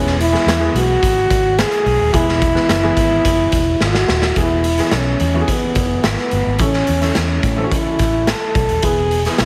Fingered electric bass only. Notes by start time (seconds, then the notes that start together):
Already playing: E1
0.46 E2
0.74 B1
1.03 G#1
1.31 G#1
1.86 B1
2.00 D#1
2.14 E1
2.69 F#1
2.97 G#1
3.25 F#1
3.53 E1
3.81 G#1
4.09 D#1
4.36 E1
4.92 B1
5.20 E2
5.63 muted fingered electric bass stroke
5.76 F#1
6.04 G#1
6.32 G1
6.46 G#1
6.59 A1
6.88 E2
7.16 E2
7.43 A2
7.86 muted fingered electric bass stroke
8.00 A1
8.55 B1
8.69 D#1
8.83 E1
9.40 B1